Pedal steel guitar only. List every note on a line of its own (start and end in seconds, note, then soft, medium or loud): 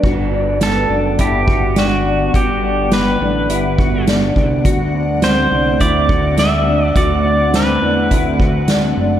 0.63 1.20 A4 medium
1.21 1.78 G4 medium
1.79 2.35 F#4 medium
2.36 2.94 G4 medium
2.93 4.04 B4 medium
5.24 5.83 C5 medium
5.81 6.34 D5 medium
6.39 6.85 E5 medium
6.85 6.97 D5 medium
6.97 7.56 D5 medium
7.56 8.66 B4 medium